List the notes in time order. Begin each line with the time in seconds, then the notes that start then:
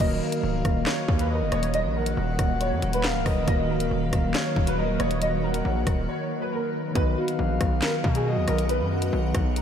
Already playing: D#3
0.00 D#1 D#3 F#3 A#3 F#4 D#5
0.04 A#4
0.21 A#4 F5
0.32 closed hi-hat
0.43 C#1
0.65 D#1, kick, cross-stick, closed hi-hat
0.86 C#5, snare, clap, closed hi-hat
1.08 D#2, kick
1.19 B4, closed hi-hat
1.30 A#4 D#5
1.41 F#1
1.52 D#1 C#5 D#5, cross-stick, closed hi-hat
1.63 closed hi-hat
1.74 D#5, closed hi-hat
1.85 A#1
1.95 A#4 F#5
2.06 closed hi-hat
2.17 D#1
2.39 D#1, kick, cross-stick, closed hi-hat
2.61 C#5, closed hi-hat
2.72 F#2
2.82 D#1, closed hi-hat
2.93 B4, closed hi-hat
3.04 A#4 F5, snare, clap
3.15 C#1
3.26 D#1 D#5, kick, cross-stick, open hi-hat
3.43 D#3 A#3
3.48 D#1 F#4 A#4 D#5, kick, closed hi-hat
3.69 C#1 A#4 F5
3.80 D#1, closed hi-hat
3.91 D#1
4.13 D#1, kick, cross-stick, closed hi-hat
4.34 C#5, snare, clap, closed hi-hat
4.56 D#1, kick
4.67 B4, closed hi-hat
4.78 A#4 D#5
4.99 D#1 C#5 D#5, cross-stick, closed hi-hat
5.11 closed hi-hat
5.22 D#5, closed hi-hat
5.43 A#4 F#5
5.54 closed hi-hat
5.65 A#1
5.87 D#1, kick, cross-stick, closed hi-hat
6.09 C#5
6.41 B4
6.52 A#4
6.91 D#3 B3
6.95 B1 F#3 B3 F#4 B4, kick, closed hi-hat
6.99 D#5
7.17 F#4 F5
7.28 closed hi-hat
7.39 A#1
7.61 B1, kick, cross-stick, closed hi-hat
7.82 A#4, snare, clap, closed hi-hat
8.04 B2, kick
8.15 G#4, closed hi-hat
8.26 F#4 D#5
8.37 D#2
8.48 B1 A#4 D#5, cross-stick, closed hi-hat
8.58 closed hi-hat
8.69 B4, closed hi-hat
8.80 F#2
8.91 F#4 F#5
9.02 closed hi-hat
9.13 B1
9.35 B1, kick, cross-stick, closed hi-hat
9.56 A#4, closed hi-hat